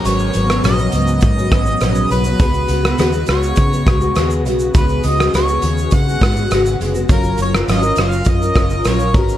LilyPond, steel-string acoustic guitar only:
\new Staff \with { instrumentName = "Steel-string acoustic guitar" } { \time 4/4 \key fis \major \tempo 4 = 102 <gis, fis b cis'>8 <gis, fis b cis'>16 <fis b cis'>16 <gis, fis b cis'>16 <fis b cis'>16 <gis, fis b cis'>8. <fis b cis'>16 <gis, fis b cis'>16 <fis b cis'>16 <gis, fis b cis'>8 <gis, fis b cis'>16 <fis b cis'>16 | <cis gis b fis'>8 <cis gis b fis'>16 <gis b fis'>16 <cis gis b fis'>16 <gis b fis'>16 <cis gis b fis'>8. <gis b fis'>16 <cis gis b fis'>16 <gis b fis'>16 <cis gis b fis'>8 <cis gis b fis'>8 | <cis gis b fis'>8 <cis gis b fis'>16 <gis b fis'>16 <cis gis b fis'>16 <gis b fis'>16 <cis gis b fis'>8. <gis b fis'>16 <cis gis b fis'>16 <gis b fis'>16 <cis gis b fis'>8 <cis gis b fis'>16 <gis b fis'>16 | <fis cis' eis' ais'>8 <fis cis' eis' ais'>16 <cis' eis' ais'>16 <fis cis' eis' ais'>16 <cis' eis' ais'>16 <fis cis' eis' ais'>8. <cis' eis' ais'>16 <fis cis' eis' ais'>16 <cis' eis' ais'>16 <fis cis' eis' ais'>8 <gis cis' fis' b'>8 | }